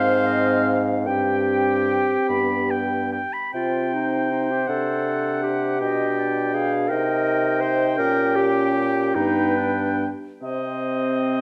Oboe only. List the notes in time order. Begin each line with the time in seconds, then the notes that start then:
Already playing: F5
1.06 G5
2.29 B5
2.71 G5
3.12 G5
3.33 B5
3.53 G5
4.68 F#5
5.81 G5
6.89 G5
9.16 G5
10.43 D#5